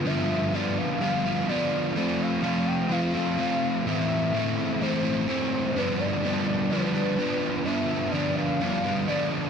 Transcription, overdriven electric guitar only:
\new Staff \with { instrumentName = "Overdriven electric guitar" } { \time 4/4 \key g \mixolydian \tempo 4 = 126 <g, d f b f'>4 <d f b f'>4 <g, d f b f'>8 <f b f'>8 <d f b f'>4 | <f a c' f'>4 <f a c' f'>4 <f a c' f'>8 <a c' f'>8 <f a c' f'>4 | <a, e a c' e'>4 <e a c' e'>4 <a, e a c' e'>8 <a c' e'>8 <e a c' e'>4 | <g, d f b d'>4 <d f b d'>4 <g, d f b d'>8 <f b d'>8 <d f b d'>4 |
<g, d f b d'>4 <d f b d'>4 <g, d f b d'>8 <f b d'>8 <d f b d'>4 | }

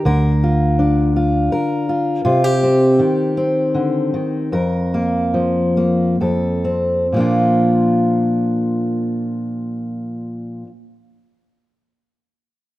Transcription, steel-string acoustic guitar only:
\new Staff \with { instrumentName = "Steel-string acoustic guitar" } { \time 3/4 \key bes \major \tempo 4 = 70 << { bes'8 f'4 f'8 bes'8 f'8 | f'16 g'16 c'4 c'4. | bes'8 bes4 bes8 a'8 c'8 | <f bes d' f'>2.~ |
<f bes d' f'>2. | } \\ { d4 d'2 | c4 ees4 d8 ees8 | f,4 f4 f,4 | bes,2.~ |
bes,2. | } >> }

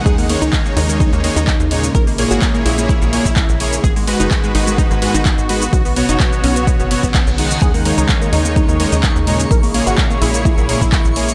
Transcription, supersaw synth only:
\new Staff \with { instrumentName = "Supersaw synth" } { \time 4/4 \key dis \phrygian \tempo 4 = 127 <dis gis dis' fis''>8 <dis gis dis' cis''>4 <dis gis dis' cis''>4 <dis gis dis' cis''>8 r8 <ais, gis dis' cis''>8 | r8 <ais, ais gis' cis''>4 <ais, ais gis' cis''>4 <ais, ais gis' cis''>8 r8 <ais gis' cis''>8 | r8 <gis, gis fis' b'>4 <gis, gis fis' b'>4 <gis, gis fis' b'>8 r8 <gis fis' b'>8 | r8 <b, b fis' cis''>4 <b, b fis' cis''>4 <b, b fis' cis''>8 r8 <dis gis dis' fis''>8~ |
<dis gis dis' fis''>8 <dis gis dis' cis''>4 <dis gis dis' cis''>4 <dis gis dis' cis''>8 r8 <ais, gis dis' cis''>8 | r8 <ais, ais gis' cis''>4 <ais, ais gis' cis''>4 <ais, ais gis' cis''>8 r8 <ais gis' cis''>8 | }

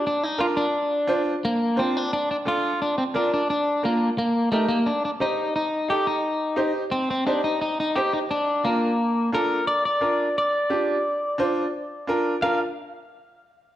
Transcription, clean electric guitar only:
\new Staff \with { instrumentName = "Clean electric guitar" } { \time 4/4 \key bes \major \tempo 4 = 175 d'8 ees'8 f'8 d'2 r8 | bes4 c'8 d'8 d'8 d'8 f'4 | d'8 c'8 d'8 d'8 d'4 bes8. r16 | bes4 a8 bes8 d'8 d'8 ees'4 |
ees'4 g'8 ees'2 r8 | c'8 c'8 d'8 ees'8 ees'8 ees'8 g'8 ees'8 | d'4 bes2 bes'4 | d''8 d''4. d''2~ |
d''2. r4 | f''8 r2. r8 | }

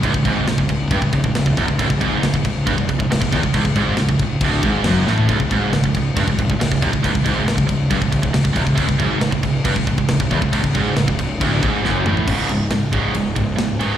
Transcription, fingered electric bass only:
\new Staff \with { instrumentName = "Fingered electric bass" } { \clef bass \time 4/4 \key cis \minor \tempo 4 = 137 cis,,16 cis,,16 gis,,8 cis,,16 cis,,16 cis,,8 g,,16 cis,,16 cis,,16 cis,,16 cis,,16 cis,,16 e,,16 cis,,16 | cis,,16 cis,,16 gis,,8 cis,,16 cis,,16 cis,,8 g,,16 cis,,16 cis,,16 cis,,16 cis,,16 cis,,16 e,,16 cis,,16 | cis,,16 cis,,16 gis,,8 cis,,16 cis,,16 cis,,8 d,,8 gis,,8 fis,,8 a,,8 | cis,,16 cis,,16 gis,,8 cis,,16 cis,,16 cis,,8 g,,16 cis,,16 cis,,16 cis,,16 cis,,16 cis,,16 e,,16 cis,,16 |
cis,,16 cis,,16 gis,,8 cis,,16 cis,,16 cis,,8 g,,16 cis,,16 cis,,16 cis,,16 cis,,16 cis,,16 e,,16 cis,,16 | cis,,16 cis,,16 gis,,8 cis,,16 cis,,16 cis,,8 g,,16 cis,,16 cis,,16 cis,,16 cis,,16 cis,,16 e,,16 cis,,16 | cis,,16 cis,,16 gis,,8 cis,,16 cis,,16 cis,,8 d,,8 gis,,8 fis,,8 a,,8 | cis,,8 cis,,8 cis,,8 cis,,8 cis,,8 cis,,8 cis,,4 | }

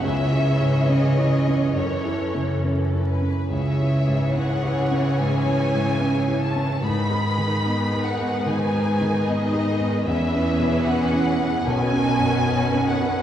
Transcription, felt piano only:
\new Staff \with { instrumentName = "Felt piano" } { \time 4/4 \key cis \minor \tempo 4 = 73 \tuplet 3/2 { cis,8 e'8 gis,8 cis'8 e'8 cis'8 fis,8 e'8 cis8 cis'8 e'8 cis'8 } | \tuplet 3/2 { cis,8 e'8 gis,8 cis'8 e'8 cis'8 gis,8 e'8 gis,8 cis'8 e'8 cis'8 } | \tuplet 3/2 { gis,8 dis'8 dis8 b8 dis'8 b8 dis8 dis'8 dis8 b8 dis'8 b8 } | \tuplet 3/2 { e,8 cis'8 b,8 b8 cis'8 b8 b,,8 cis'8 fis,8 b8 cis'8 b8 } | }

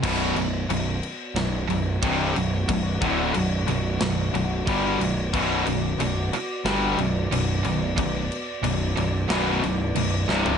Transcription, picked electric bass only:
\new Staff \with { instrumentName = "Picked electric bass" } { \clef bass \time 4/4 \key b \minor \tempo 4 = 91 b,,,8 b,,,8 b,,,8 r8 b,,,8 b,,,8 c,,8 b,,,8 | b,,,8 d,,8 b,,,8 b,,,8 b,,,8 b,,,8 g,,8 b,,,8 | b,,,8 b,,,8 b,,,8 r8 g,,8 b,,,8 b,,,8 b,,,8 | b,,,8 r8 b,,,8 b,,,8 b,,,8 b,,,8 b,,,8 c,,8 | }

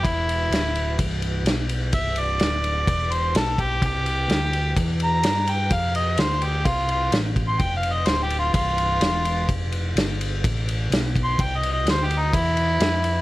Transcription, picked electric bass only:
\new Staff \with { instrumentName = "Picked electric bass" } { \clef bass \time 4/4 \key c \major \tempo 4 = 127 e,,4 d,,4 c,,4 b,,4 | c,,4 d,,4 e,,4 b,,4 | c,4 d,4 e,4 g,4 | f,4 d,4 c,4 a,,4 |
f,,4 d,,4 c,,4 e,,4 | f,,4 g,,4 a,,4 b,,4 | c,4 d,4 e,4 f,4 | }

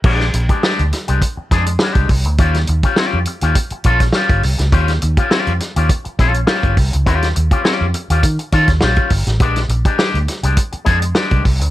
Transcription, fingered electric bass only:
\new Staff \with { instrumentName = "Fingered electric bass" } { \clef bass \time 4/4 \key ees \lydian \tempo 4 = 103 bes,,8 bes,,16 r8 d,16 r16 c,16 r8 f,8 r16 c,16 c,16 d,16 | ees,8 ees,16 r8 f,16 r16 ees,16 r8 bes,,8 r16 g,,16 c,16 des,16 | ees,8 ees,16 r8 f,16 r16 ees,16 r8 bes,,8 r16 g,,16 c,16 des,16 | ees,8 ees,16 r8 f,16 r16 ees,16 ees16 r16 ees16 ees,16 bes,,16 r16 g,,16 a,,16 |
bes,,8 bes,,16 r8 d,16 r16 c,16 r8 f,8 r16 c,16 c,16 d,16 | }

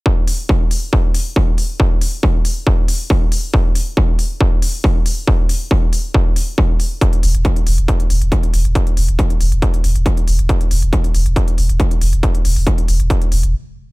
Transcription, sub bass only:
\new Staff \with { instrumentName = "Sub bass" } { \clef bass \time 4/4 \key c \major \tempo 4 = 138 r1 | r1 | r1 | r1 |
r8 e,,16 e,,16 r8 e,,16 e,,16 r8 e,,16 e,,16 r8 e,,16 e,,16 | r8 e,,16 e,,16 r8 e,,16 e,,16 r8 e,,16 e,,16 r8 e,,16 e,,16 | r8 e,,16 e,,16 r8 e,,16 e,,16 r8 e,,16 e,,16 r8 e,,16 e,,16 | r8 e,,16 e,,16 r8 e,,16 e,,16 r8 e,,16 e,,16 r4 | }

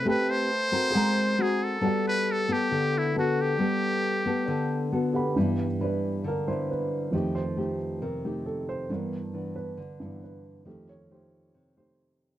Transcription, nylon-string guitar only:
\new Staff \with { instrumentName = "Nylon-string guitar" } { \time 4/4 \key g \major \tempo 4 = 136 << { <c' g' b'>4 r8 <c' fis' bes'>4. <c' ges' bes'>4 | <b fis' a'>4. <b a'>4. <b fis' a'>4 | <b a'>4. <b a'>4. <b fis' a'>8 r8 | <d' e' b'>8 r8 <d' e' b'>4 r8 <d' e' b'>4. |
<a ees' g'>8 r8 <a ees' g'>4 r8 <a ees' g'>4. | <e b d'>8 r8 <e b d'>4 r8 <e b d'>4. | <a ees' g'>8 r8 <a ees' g'>4. <a ees' g'>4. | } \\ { a2 aes2 | g2 d2 | g2 d2 | g2 d2 |
f2 c2 | g,2 d2 | f2 c2 | } >> }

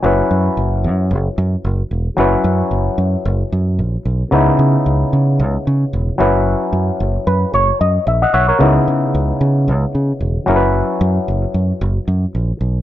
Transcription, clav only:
\new Staff \with { instrumentName = "Clav" } { \time 4/4 \key fis \dorian \tempo 4 = 112 << { r1 | r1 | r1 | r4. b'8 cis''8 dis''8 e''16 <dis'' fis''>16 <cis'' e'' fis''>16 <ais' cis''>16~ |
<ais' cis''>16 r2. r8. | r1 | } \\ { <fis cis' e' b'>1 | <fis cis' e' b'>1 | <cis b dis' e'>2.~ <cis b dis' e'>8 <fis cis' e' b'>8~ | <fis cis' e' b'>2.~ <fis cis' e' b'>8 r8 |
<cis b dis' e'>2.~ <cis b dis' e'>8 <fis cis' e' ais' b'>8~ | <fis cis' e' ais' b'>2.~ <fis cis' e' ais' b'>8 r8 | } >> }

